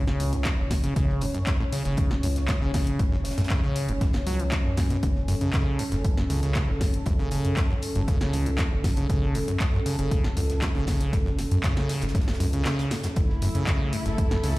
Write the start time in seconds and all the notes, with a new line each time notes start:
Already playing: F#1 C#4 C#5
0.07 C#3, snare
0.20 C#2, closed hi-hat, open hi-hat
0.33 F#2, closed hi-hat
0.45 F#2, kick, snare, clap, closed hi-hat
0.58 F#1
0.70 A2, kick, snare, closed hi-hat, open hi-hat
0.84 C#3, closed hi-hat
0.96 F#1 C#3, kick, closed hi-hat
1.09 snare
1.21 F#2, closed hi-hat, open hi-hat
1.34 F#2, closed hi-hat
1.47 kick, snare, clap, closed hi-hat
1.60 A2
1.73 C#3, closed hi-hat, open hi-hat
1.85 F#1 C#3, snare, closed hi-hat
1.97 kick, closed hi-hat
2.11 F#2, snare
2.23 C#2 F#2, closed hi-hat, open hi-hat
2.36 snare, closed hi-hat
2.48 A2, kick, snare, clap, closed hi-hat
2.61 F#1 C#3
2.74 kick, snare, closed hi-hat, open hi-hat
2.87 closed hi-hat
2.99 F#1 F#2, kick, closed hi-hat
3.12 F#2, snare
3.24 snare, closed hi-hat, open hi-hat
3.31 snare, closed hi-hat
3.38 F#2 A2, snare, closed hi-hat
3.44 snare, closed hi-hat
3.50 C#3, kick, snare, clap, closed hi-hat
3.63 C#3
3.76 closed hi-hat, open hi-hat
3.89 F#1 F#2, closed hi-hat
4.01 F#2, kick, snare, closed hi-hat
4.13 snare, closed hi-hat
4.27 C#2 F#3, closed hi-hat, open hi-hat
4.40 E3, closed hi-hat
4.52 F#2, kick, snare, clap, closed hi-hat
4.65 F#2
4.77 F#2, kick, snare, closed hi-hat, open hi-hat
4.90 B2, closed hi-hat
5.03 F#1 F#2 A4, kick, closed hi-hat
5.15 snare
5.28 F#2, closed hi-hat, open hi-hat
5.41 F#2 C#3, closed hi-hat
5.53 C#3, kick, snare, clap, closed hi-hat
5.79 F#2, closed hi-hat, open hi-hat
5.92 F#1 F#2, snare, closed hi-hat
6.04 kick, closed hi-hat
6.17 F#2, snare
6.30 C#2 C#3, closed hi-hat, open hi-hat
6.43 C#3, snare, closed hi-hat
6.55 kick, snare, clap, closed hi-hat
6.68 F#1 F#2
6.81 F#2, kick, snare, closed hi-hat, open hi-hat
6.94 closed hi-hat
7.06 F#1 F#2, kick, closed hi-hat
7.18 C#3, snare
7.31 C#3, closed hi-hat, open hi-hat
7.45 F#2, closed hi-hat
7.57 F#2, kick, snare, clap, closed hi-hat
7.70 F#2
7.82 closed hi-hat, open hi-hat
7.95 F#1 F#2, closed hi-hat
8.08 C#3, kick, closed hi-hat
8.21 C#3, snare
8.33 C#2, closed hi-hat, open hi-hat
8.46 F#2, closed hi-hat
8.58 F#2, kick, snare, clap, closed hi-hat
8.72 F#1
8.84 F#2, kick, snare, closed hi-hat, open hi-hat
8.96 C#3, closed hi-hat
9.09 F#1 C#3, kick, closed hi-hat
9.22 snare
9.35 F#2, closed hi-hat, open hi-hat
9.48 F#2, closed hi-hat
9.60 kick, snare, clap, closed hi-hat
9.73 F#2
9.86 C#3, closed hi-hat, open hi-hat
9.99 F#1 C#3, closed hi-hat
10.11 kick, closed hi-hat
10.24 F#2, snare
10.37 C#2 F#2, closed hi-hat, open hi-hat
10.50 snare, closed hi-hat
10.62 F#2, kick, snare, clap, closed hi-hat
10.75 F#1 C#3
10.87 C#3, kick, snare, closed hi-hat, open hi-hat
11.01 snare, closed hi-hat
11.13 F#1 F#2, kick, snare, closed hi-hat
11.26 F#2, snare
11.39 snare, closed hi-hat, open hi-hat
11.51 F#2, closed hi-hat
11.64 C#3, kick, snare, clap, closed hi-hat
11.77 C#3, snare
11.89 snare, closed hi-hat, open hi-hat
12.01 F#1 F#2, snare, closed hi-hat
12.08 snare, closed hi-hat
12.15 F#2, kick, snare, closed hi-hat
12.21 snare, closed hi-hat
12.28 snare, closed hi-hat
12.34 snare, closed hi-hat
12.40 C#2 F#2, closed hi-hat, open hi-hat
12.53 C#3, closed hi-hat
12.65 C#3, snare, clap, closed hi-hat
12.78 snare, closed hi-hat
12.91 F#2, snare, closed hi-hat, open hi-hat
13.03 F#2, snare, closed hi-hat
13.16 F#1 F#2 A3 E4 A4, kick, closed hi-hat
13.29 snare
13.42 F#2, closed hi-hat, open hi-hat
13.55 F#2 C#3, closed hi-hat
13.67 kick, snare, clap, closed hi-hat
13.93 F#2, closed hi-hat, open hi-hat
14.06 F#1 F#2 A4, snare, closed hi-hat
14.18 kick, closed hi-hat
14.31 F#2, snare
14.43 C#2 C#3, closed hi-hat, open hi-hat